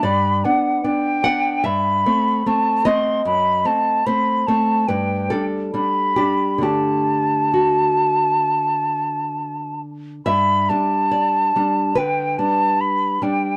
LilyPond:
<<
  \new Staff \with { instrumentName = "Flute" } { \time 4/4 \key g \major \tempo 4 = 72 b''8 fis''8 g''4 b''4 a''8 c'''8 | b''8 a''8 b''8 a''8 g''8 r8 b''4 | a''2.~ a''8 r8 | b''8 a''4. g''8 a''8 b''8 g''8 | }
  \new Staff \with { instrumentName = "Nylon-string guitar" } { \time 4/4 \key g \major << { d''4. fis''8 e''4. ees''8~ | ees''4 c''4 b'8 a'4 g'8 | g'4 fis'2~ fis'8 r8 | e''4 d''4 b'2 | } \\ { g,8 <b d'>8 <b d'>8 <b d'>8 g,8 <a c'>8 <a c'>8 <a c'>8 | fis,8 <a c'>8 <a c'>8 <a c'>8 g,8 <g d'>8 <g d'>8 <g d'>8 | <d a d'>1 | g,8 <g d'>4 <g d'>8 d8 <g d'>4 <g d'>8 | } >> }
>>